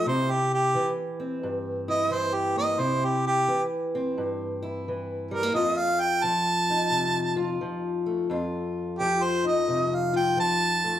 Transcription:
0.06 steel-string acoustic guitar C3 E4, harmonica C5
0.31 harmonica G4
0.54 harmonica G4
0.75 steel-string acoustic guitar E3
1.20 steel-string acoustic guitar C4
1.43 steel-string acoustic guitar G2
1.88 steel-string acoustic guitar E4, harmonica D#5
2.11 steel-string acoustic guitar E3, harmonica C5
2.34 harmonica G4
2.56 steel-string acoustic guitar A#3, harmonica D#5
2.78 steel-string acoustic guitar C3 E4, harmonica C5
3.05 harmonica G4
3.27 harmonica G4
3.48 steel-string acoustic guitar E3
3.95 steel-string acoustic guitar C4
4.18 steel-string acoustic guitar G2
4.62 steel-string acoustic guitar E4
4.88 steel-string acoustic guitar E3
5.31 steel-string acoustic guitar G3, harmonica A#4
5.43 steel-string acoustic guitar A#3
5.54 steel-string acoustic guitar F2 F4, harmonica D#5
5.78 harmonica F5
6.00 harmonica G5
6.23 steel-string acoustic guitar F3, harmonica A5
6.70 steel-string acoustic guitar D#4
6.90 steel-string acoustic guitar C3
7.36 steel-string acoustic guitar F4
7.61 steel-string acoustic guitar F3
8.06 steel-string acoustic guitar A3
8.30 steel-string acoustic guitar F2 F4
8.99 steel-string acoustic guitar F3, harmonica G4
9.24 harmonica C5
9.44 steel-string acoustic guitar D#4, harmonica D#5
9.68 steel-string acoustic guitar C3
9.95 harmonica F5
10.13 steel-string acoustic guitar F4, harmonica G5
10.37 steel-string acoustic guitar F3, harmonica A5
10.84 steel-string acoustic guitar A3

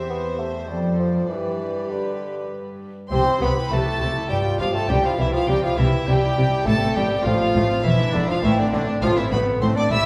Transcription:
Already playing: lute E2 C4, cello section E2, viola section G4, violin section C5 E5
0.10 bassoon B3
0.39 bassoon A3
0.65 lute A3 C4 D4
0.69 cello section F2, lute F2, bassoon G3, viola section A4, violin section D5
0.99 bassoon F3
1.27 cello section G2, lute G2 B3 D4, bassoon E3, viola section G4, violin section B4
1.91 bassoon D3
3.08 double bass section C2, lute C3 C4 E4, cello section C3, bassoon C4, viola section G4, violin section C5 C6
3.26 viola section E4
3.41 double bass section C2, cello section C3, lute C3, bassoon B3, viola section G4, violin section B4 B5
3.56 viola section E4
3.70 double bass section C2, cello section C3, bassoon A3, viola section G4, violin section A4 A5
3.85 viola section E4
4.00 double bass section C2, cello section C3, lute C3, viola section G4
4.15 viola section E4
4.27 double bass section G1, cello section G2, lute G2 B3 F4, bassoon G3, violin section G4 G5, viola section G4
4.46 viola section F4
4.59 double bass section G1, lute G2, cello section G2, bassoon F3, violin section F4 F5, viola section G4
4.74 bassoon A3, viola section F4, violin section A4 A5
4.86 double bass section C2, lute C3 C4 E4, bassoon G3, violin section G4 G5, viola section G4
4.90 cello section C3
5.04 bassoon F3, viola section E4, violin section F4 F5
5.19 double bass section C2, cello section C3, bassoon E3, violin section E4 E5, viola section G4
5.34 bassoon F3, viola section E4, violin section F4 F5
5.48 double bass section C2, lute C3, cello section C3, bassoon G3, viola section G4, violin section G4 G5
5.63 bassoon F3, viola section E4, violin section F4 F5
5.77 double bass section C2, cello section C3, bassoon E3, violin section E4 E5, viola section G4
5.93 viola section E4
6.07 double bass section C2, cello section C3, lute C3, bassoon G3, viola section G4, violin section G4 G5
6.22 viola section E4
6.36 double bass section C2, lute C3, cello section C3, viola section G4
6.52 viola section E4
6.62 lute A3 C4 E4
6.66 double bass section A1, lute A2, cello section A2, viola section A3, bassoon A3, violin section A4 A5
6.82 viola section C4
6.96 double bass section A1, cello section A2, lute A2, bassoon G3, viola section A3, violin section G4 G5
7.12 viola section C4
7.25 double bass section A1, cello section A2, lute A2, bassoon F3, viola section A3, violin section F4 F5
7.41 viola section C4
7.55 double bass section A1, cello section A2, lute A2, viola section A3
7.71 viola section C4
7.80 lute G#3 D4 E4
7.84 double bass section E1, cello section E2, lute E2, bassoon E3, violin section E4 E5, viola section E4
8.00 viola section D4
8.14 double bass section E1, lute E2, cello section E2, bassoon D3, violin section D4 D5, viola section E4
8.29 bassoon F3, viola section D4, violin section F4 F5
8.39 lute A3 C4 E4
8.43 double bass section A1, lute A2, cello section A2, bassoon E3, viola section A3, violin section E4 E5
8.58 bassoon D3, viola section C4, violin section D4 D5
8.73 double bass section A1, lute A2, cello section A2, bassoon D3, viola section A3, violin section D4 D5
8.89 viola section C4
9.02 double bass section A1, lute A2, cello section A2, bassoon F3, viola section A3, violin section F4 F5
9.17 bassoon E3, viola section C4, violin section E4 E5
9.31 double bass section A1, lute A2, cello section A2, viola section A3, bassoon B3, violin section B4 B5
9.47 viola section C4
9.61 double bass section A1, cello section A2, lute A2, viola section A3, bassoon C4, violin section C5 C6
9.77 viola section C4, bassoon D4, violin section D5 D6
9.90 double bass section A1, lute A2, cello section A2, viola section A3, bassoon E4, violin section E5 E6

